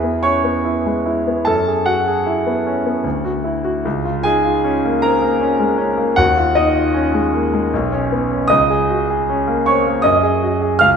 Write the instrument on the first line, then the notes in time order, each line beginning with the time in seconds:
grand piano
Already playing: E2 E4 F#4 G#4 B4 B5
0.03 B3
0.23 C#4 C#5 C#6
0.44 B3
0.65 E4
0.86 G#3
1.06 E4
1.27 B3
1.45 F#2 A4 A5
1.67 G#4
1.86 F#4 F#5
2.07 G#4
2.26 E4
2.46 B3
2.66 C#4
2.86 B3
3.04 D2
3.25 F#4
3.44 E4
3.64 F#4
3.85 C#2
4.05 F4
4.23 D#4 G#4 G#5
4.44 F4
4.64 C#4
4.85 A#3
5.02 C4 A#4 A#5
5.22 A#3
5.41 C#4
5.59 G#3
5.78 C#4
5.97 A#3
6.16 D#2 F#4 F#5
6.37 F4
6.55 D#4 D#5
6.75 F4
6.94 C#4
7.14 G#3
7.33 A#3
7.53 G#3
7.73 B1
7.92 C#4
8.12 B3
8.31 C#4
8.48 C#2 D#5 D#6
8.70 G#4
8.90 F#4
9.10 G#4
9.29 C#4
9.47 A#3
9.66 C4 C#5 C#6
9.87 A#3
10.02 F#2 D#5 D#6
10.23 G#4
10.43 F#4
10.62 G#4
10.79 C#2 F5 F6